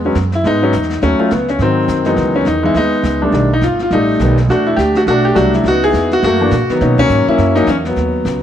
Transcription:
Already playing: E2
0.05 F#3 G#3 B3 C#4
0.15 F#2, snare, hi-hat pedal
0.32 E4, snare
0.44 G#2 G#3 B3 D#4, brush sweep, snare
0.62 F#3 G#3 B3 C#4
0.73 E2, snare, hi-hat pedal
0.82 snare
0.90 snare
0.92 snare
1.02 D#2 F#3 A3 C#4, brush sweep, snare
1.19 F#3 A3 C#4 F4, muted upright bass stroke
1.31 C#2 B3, snare, hi-hat pedal
1.48 C#4, snare
1.59 G#2 C4, brush sweep, snare
1.63 D#3 F#3
1.88 F#2, snare, hi-hat pedal
2.05 D#3 E3 F#3 G#3 B3 D#4, snare
2.16 C#2, brush sweep, snare
2.36 C#4
2.45 E2 D#4, snare, hi-hat pedal
2.63 E3 G#3 B3 D#4 E4
2.74 D#2 G#3 B3 D#4, brush sweep, snare
3.04 C#2, snare, hi-hat pedal
3.22 G3 A3 D4
3.32 B1 D#3 G3 A3 D4, brush sweep, snare
3.53 D#4
3.61 G1 F4, snare, hi-hat pedal
3.79 F4, snare
3.91 A1 G3 D#4, brush sweep, snare
3.95 A3
4.20 B1 D#3 G3 A3 B3, snare, hi-hat pedal
4.37 snare
4.49 E2 A3 D4 F#4, brush sweep, snare
4.67 E4
4.76 D2 G4, snare, hi-hat pedal
4.95 F#4, snare
5.07 B1 A3 D4 F#4, brush sweep, snare
5.25 G4
5.35 C2 F#3 G3 A3 D4 F#4, snare, hi-hat pedal
5.54 E4, snare
5.64 C#2, brush sweep, snare
5.68 B3 D#4 F#4
5.84 B3 E4 G#4
5.93 E2, snare, hi-hat pedal
6.11 F#4, snare
6.23 F#2 F#4, brush sweep, snare
6.27 A3 A#3
6.41 E3 A3 A#3 D4
6.51 A#2, snare, hi-hat pedal
6.69 D#3 F#3 B3, muted upright bass stroke, snare
6.81 B2 F#3 A#3 C#4 D#4, brush sweep, snare
6.98 F#3 A#3 C#4, kick, crash
7.09 G#2, hi-hat pedal
7.27 A#3 C#4 E4, muted upright bass stroke
7.38 F#2, brush sweep, snare
7.55 F#3 A#3 C#4 D#4, snare
7.67 E2 C#4, snare, hi-hat pedal
7.85 F#3 B3, snare
7.96 D#2, brush sweep, snare
8.25 C#2, snare, hi-hat pedal

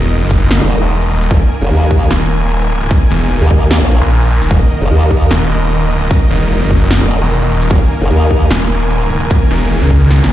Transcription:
Already playing: E1 D#3 A#3 A#4 D#5
0.01 closed hi-hat
0.11 closed hi-hat
0.21 F#1
0.31 kick, closed hi-hat
0.51 snare, closed hi-hat
0.61 D#1
0.71 shaker
0.81 E1
0.91 closed hi-hat
1.01 shaker
1.11 D#1, open hi-hat
1.21 closed hi-hat, shaker
1.31 D#1 G#5, kick, closed hi-hat
1.61 F#1, closed hi-hat
1.71 D#2, closed hi-hat
1.91 kick, closed hi-hat
2.11 D#1, snare, closed hi-hat
2.51 closed hi-hat
2.61 shaker
2.66 D1
2.71 open hi-hat
2.81 closed hi-hat
2.91 kick, closed hi-hat, shaker
3.11 E1
3.21 closed hi-hat
3.31 closed hi-hat
3.41 D#2
3.51 kick, open hi-hat
3.71 snare, closed hi-hat
3.81 A#1
3.91 shaker
4.01 A#1
4.11 closed hi-hat
4.21 shaker
4.31 open hi-hat
4.41 D#1, closed hi-hat, shaker
4.51 D#1 D#5, kick, closed hi-hat
4.81 F#1, closed hi-hat
4.91 D#2, closed hi-hat
5.11 kick, closed hi-hat
5.31 D#1, snare, closed hi-hat
5.71 closed hi-hat
5.81 shaker
5.86 D1
5.91 open hi-hat
6.01 closed hi-hat
6.11 kick, closed hi-hat, shaker
6.31 E1
6.41 closed hi-hat
6.51 closed hi-hat
6.61 F#1
6.71 kick, closed hi-hat
6.91 snare, closed hi-hat
7.01 D#1
7.11 shaker
7.21 E1
7.31 closed hi-hat
7.41 shaker
7.51 D#1, open hi-hat
7.61 closed hi-hat, shaker
7.71 D#1 G#5, kick, closed hi-hat
8.01 F#1, closed hi-hat
8.11 D#2, closed hi-hat
8.31 kick, closed hi-hat
8.51 D#1, snare, closed hi-hat
8.91 closed hi-hat
9.01 shaker
9.11 open hi-hat
9.21 closed hi-hat
9.31 kick, closed hi-hat, shaker
9.51 E1
9.61 closed hi-hat
9.71 closed hi-hat
9.81 C#2
9.91 kick, open hi-hat
10.11 snare, closed hi-hat
10.24 snare

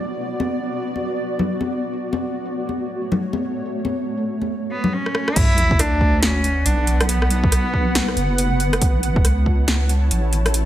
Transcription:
Already playing: B3 F#4 D5
0.40 high conga
0.96 high conga
1.39 low conga
1.61 high conga
1.91 A3 C#5
2.13 high conga
2.69 high conga
3.12 low conga
3.33 high conga
3.85 high conga
4.42 high conga
4.72 B3
4.84 low conga
4.93 C#4
5.06 cross-stick
5.15 cross-stick
5.28 cross-stick
5.36 B1 B3 E4 B4 F#5, kick, closed hi-hat, crash, sub drop
5.58 closed hi-hat
5.71 kick
5.79 D2 D4, cross-stick, closed hi-hat
6.01 kick
6.23 C#4, cross-stick, snare, closed hi-hat
6.44 closed hi-hat
6.66 B1 D4, closed hi-hat
6.87 closed hi-hat
7.01 cross-stick, closed hi-hat
7.09 B3, closed hi-hat
7.22 cross-stick
7.30 closed hi-hat
7.44 kick
7.52 B1, cross-stick, closed hi-hat
7.74 kick
7.95 snare, closed hi-hat
8.08 cross-stick
8.17 F#1, closed hi-hat
8.38 closed hi-hat
8.60 closed hi-hat
8.73 cross-stick, closed hi-hat
8.81 A1 E4 C#5 A5, kick, closed hi-hat
9.03 closed hi-hat
9.16 kick
9.25 C#2, cross-stick, closed hi-hat
9.46 kick
9.68 cross-stick, snare, closed hi-hat
9.89 closed hi-hat
10.11 A1, closed hi-hat
10.33 closed hi-hat
10.46 cross-stick, closed hi-hat
10.54 closed hi-hat

